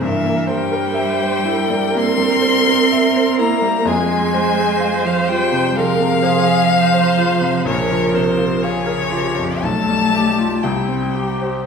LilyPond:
<<
  \new Staff \with { instrumentName = "Violin" } { \time 4/4 \key f \minor \tempo 4 = 63 e''8 g''4. c'''4. bes''8 | aes''4~ aes''16 f''16 g''8 f''2 | des''8 c''8 des''4 a''4 g''4 | }
  \new Staff \with { instrumentName = "Viola" } { \time 4/4 \key f \minor bes'4 c''8 bes'2~ bes'8 | aes'8 c''4. bes'8 aes'8 c''4 | bes'4 aes'8 g'8 a'8 g'8 e'8 g'8 | }
  \new Staff \with { instrumentName = "Grand piano" } { \time 4/4 \key f \minor g,16 bes16 c''16 bes'16 e''16 c''16 e'16 g16 bes16 g16 c''16 bes'16 e''16 c''16 e'16 g16 | f,16 aes16 c''16 aes'16 f''16 c''16 f'16 c16 aes16 c16 c''16 aes'16 f''16 c''16 f'16 c16 | bes,,16 f16 bes'16 f'16 f''16 bes'16 f'16 f,16 b,,16 g16 g'16 f'16 c,16 c'16 g'16 c''16 | }
  \new Staff \with { instrumentName = "Cello" } { \clef bass \time 4/4 \key f \minor e8 g4. c'4. bes8 | aes4~ aes16 f16 g8 f2 | des8 c8 des4 a4 g4 | }
>>